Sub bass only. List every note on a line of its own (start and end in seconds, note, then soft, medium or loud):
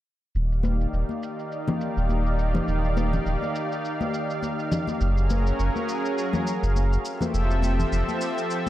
0.35 0.86 D#1 medium
0.93 1.04 D#1 medium
1.97 2.60 D#1 medium
2.68 3.19 D#1 medium
3.26 3.36 D#1 medium
5.01 5.52 F#1 medium
5.59 5.70 F#1 medium
6.63 6.97 F#1 medium
7.34 7.85 F1 medium
7.92 8.03 F1 medium